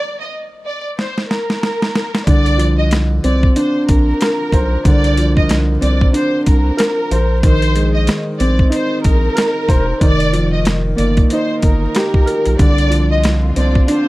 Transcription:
0.00 0.18 D5 loud
0.20 0.32 D#5 medium
0.65 0.83 D5 medium
0.98 1.27 C5 medium
0.98 snare medium
1.18 snare medium
1.30 2.23 A#4 medium
1.30 snare medium
1.50 snare medium
1.63 snare medium
1.82 snare medium
1.95 snare loud
2.15 snare medium
2.27 3.20 C2 loud
2.27 4.85 D3 medium
2.27 2.75 D5 loud
2.27 kick loud
2.27 closed hi-hat loud
2.46 closed hi-hat medium
2.58 5.16 F3 medium
2.58 closed hi-hat medium
2.79 2.91 D#5 medium
2.91 cross-stick medium
2.91 snare loud
2.91 closed hi-hat medium
3.24 3.49 C2 medium
3.24 5.79 C4 medium
3.24 3.41 D5 medium
3.24 closed hi-hat medium
3.43 kick medium
3.56 6.12 D4 loud
3.56 3.85 C5 medium
3.56 closed hi-hat medium
3.88 4.13 A#1 medium
3.88 4.81 A#4 medium
3.88 kick medium
3.88 closed hi-hat medium
4.21 6.76 A#4 medium
4.21 cross-stick medium
4.21 snare loud
4.21 closed hi-hat loud
4.52 4.77 B1 medium
4.52 7.10 C5 medium
4.52 kick loud
4.52 closed hi-hat medium
4.85 5.78 C2 loud
4.85 7.12 D3 loud
4.85 5.34 D5 loud
4.85 kick loud
4.85 closed hi-hat loud
5.04 closed hi-hat medium
5.18 7.11 F3 medium
5.18 closed hi-hat medium
5.37 5.49 D#5 medium
5.37 kick loud
5.49 cross-stick medium
5.49 snare loud
5.49 closed hi-hat medium
5.81 6.07 C2 medium
5.81 7.10 C4 medium
5.81 5.99 D5 medium
5.81 closed hi-hat medium
6.01 kick loud
6.13 7.10 D4 loud
6.13 6.44 C5 medium
6.13 closed hi-hat medium
6.46 6.71 C2 loud
6.46 7.39 A#4 medium
6.46 kick medium
6.46 closed hi-hat medium
6.77 7.10 A#4 loud
6.77 cross-stick medium
6.77 snare loud
6.77 closed hi-hat loud
7.11 8.09 A#1 loud
7.11 7.44 C5 loud
7.11 closed hi-hat medium
7.43 10.01 D#3 loud
7.43 7.92 C5 loud
7.43 kick loud
7.43 closed hi-hat medium
7.62 closed hi-hat medium
7.75 10.01 G#3 medium
7.75 closed hi-hat medium
7.94 8.06 D#5 medium
8.07 cross-stick medium
8.07 snare loud
8.07 closed hi-hat loud
8.39 8.65 A#1 medium
8.39 10.02 C4 medium
8.39 8.56 D5 medium
8.39 closed hi-hat medium
8.59 kick loud
8.70 10.00 D#4 medium
8.70 9.02 C5 medium
8.70 closed hi-hat medium
9.04 9.29 A#1 loud
9.04 9.97 A#4 medium
9.04 kick medium
9.04 closed hi-hat medium
9.35 10.00 A#4 loud
9.35 cross-stick medium
9.35 snare loud
9.35 closed hi-hat loud
9.69 9.93 E1 medium
9.69 10.01 C5 loud
9.69 kick medium
9.69 closed hi-hat medium
10.01 10.94 F1 loud
10.01 12.60 D#3 loud
10.01 10.50 D5 loud
10.01 kick loud
10.01 closed hi-hat loud
10.20 closed hi-hat medium
10.33 12.59 F3 medium
10.33 closed hi-hat medium
10.53 10.65 D#5 medium
10.65 cross-stick medium
10.65 snare loud
10.65 closed hi-hat medium
10.96 11.23 G1 loud
10.96 12.58 A#3 medium
10.96 11.15 D5 medium
10.96 closed hi-hat medium
11.17 kick medium
11.17 closed hi-hat medium
11.30 12.61 D#4 loud
11.30 11.60 C5 medium
11.30 closed hi-hat medium
11.62 11.87 G1 medium
11.62 12.55 A#4 medium
11.62 kick medium
11.62 closed hi-hat medium
11.95 12.60 G4 loud
11.95 cross-stick medium
11.95 snare loud
11.95 closed hi-hat medium
12.14 kick loud
12.26 12.59 A#4 loud
12.26 closed hi-hat medium
12.46 12.56 B1 medium
12.46 closed hi-hat soft
12.59 13.52 C2 loud
12.59 14.08 D3 medium
12.59 14.08 A#3 medium
12.59 14.08 C4 medium
12.59 14.08 D4 medium
12.59 14.08 F4 medium
12.59 13.08 D5 loud
12.59 kick loud
12.59 closed hi-hat loud
12.78 closed hi-hat medium
12.90 14.08 F3 medium
12.90 closed hi-hat medium
13.11 13.23 D#5 medium
13.23 cross-stick medium
13.23 snare loud
13.23 closed hi-hat medium
13.56 13.81 C2 medium
13.56 14.08 C4 medium
13.56 13.74 D5 medium
13.56 closed hi-hat medium
13.75 kick loud
13.88 14.08 D4 loud
13.88 14.08 C5 medium
13.88 closed hi-hat medium

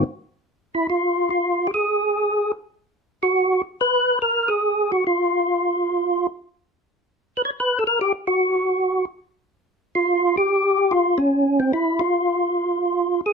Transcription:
0.75 0.87 E4 medium
0.90 1.29 F4 medium
1.30 1.68 F4 medium
1.67 1.71 G4 medium
1.74 2.52 G#4 medium
3.23 3.62 F#4 medium
3.81 4.19 B4 medium
4.22 4.50 A#4 medium
4.48 4.91 G#4 medium
4.92 5.04 F#4 medium
5.07 6.27 F4 medium
7.37 7.42 B4 medium
7.45 7.51 C#5 medium
7.60 7.79 B4 medium
7.79 7.84 A4 medium
7.87 7.99 A#4 medium
8.01 8.12 G4 medium
8.27 9.05 F#4 medium
9.95 10.36 F4 medium
10.37 10.93 G4 loud
10.91 11.18 F4 medium
11.18 11.60 C#4 medium
11.60 11.72 C4 medium
11.73 12.01 E4 medium
11.99 13.21 F4 medium
13.26 13.32 G#4 medium

